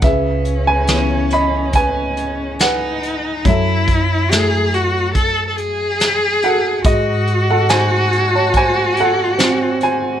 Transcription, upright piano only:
<<
  \new Staff \with { instrumentName = "Upright piano" } { \time 4/4 \key cis \minor \tempo 4 = 71 <gis' e''>8. <b' gis''>8. <dis'' b''>8 <b' gis''>4 <b' fis''>4 | <a' e''>2. r8 <a' fis''>8 | <fis' dis''>8. <a' fis''>16 <bis' gis''>8. <cis'' a''>16 <bis' gis''>8 <a' fis''>4 <bis' gis''>8 | }
  \new Staff \with { instrumentName = "Upright piano" } { \time 4/4 \key cis \minor cis4 <e b cis'>2. | fis4 <a e' fis'>2. | gis4 <dis' fis'>2. | }
>>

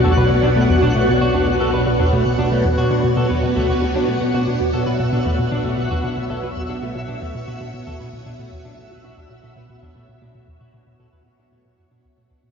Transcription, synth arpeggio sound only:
\new Staff \with { instrumentName = "Synth arpeggio sound" } { \clef bass \time 4/4 \key b \minor \tempo 4 = 115 e,16 b,16 b,16 b,16 b,16 e,16 b,16 b,16 b,16 b,16 e,16 b,16 b,16 b,16 b,16 e,16 | b,16 b,16 b,16 b,16 e,16 b,16 b,16 b,16 b,16 e,16 b,16 d,16 d,16 d,16 fis16 b,16 | b,16 b,16 b,16 e,16 b,16 b,16 b,16 b,16 e,16 b,16 b,16 b,16 b,16 e,16 b,16 b,16 | b,16 b,16 e,16 b,16 b,16 b,16 b,16 e,16 b,16 b,16 b,16 b,16 e,16 b,16 b,16 b,16 |
b,16 e,16 b,16 b,16 b,16 b,16 e,16 b,16 b,16 b,16 b,16 e,16 b,16 b,16 b,16 b,16 | e,16 b,16 b,16 b,16 b,16 e,16 b,16 b,16 b,16 b,16 fis,16 b,16 d,16 b,16 d,16 b,16 | }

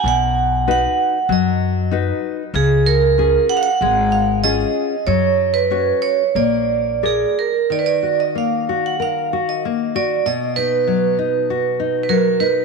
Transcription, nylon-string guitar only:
\new Staff \with { instrumentName = "Nylon-string guitar" } { \time 4/4 \key ais \phrygian \tempo 4 = 95 b,4 <dis' fis' b'>4 fis4 <dis' fis' b'>4 | cis4 <cis' eis' gis'>4 gis4 <cis' eis' gis'>4 | fis4 <cis' fis' cis''>4 ais4 <gis' ais' d''>4 | \key ees \minor ees8 ges'8 bes8 ges'8 bes'8 ges'8 bes8 ges'8 |
b,8 dis'8 fis8 dis'8 fis'8 dis'8 fis8 dis'8 | }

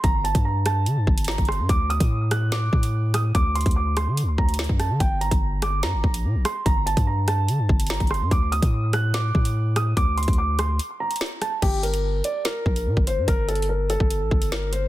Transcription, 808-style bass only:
\new Staff \with { instrumentName = "808-style bass" } { \clef bass \time 4/4 \key g \minor \tempo 4 = 145 g,,8. g,4~ g,16 d16 g,16 g,,8. g,,8 g,16 | d,8. a,4.~ a,16 a,4. | d,8. d,4 d16. d,16. d,8. fis,8 d16 | g,,8. g,,4~ g,,16 g,16 g,,16 bes,,8 bes,16 bes,,16 r8 |
g,,8. g,4~ g,16 d16 g,16 g,,8. g,,8 g,16 | d,8. a,4.~ a,16 a,4. | d,8. d,4~ d,16 r2 | g,,4. r4 bes,,8 bes,16 g,,8 g,16 |
g,,4.~ g,,16 g,,8 a,,16 g,,4. | }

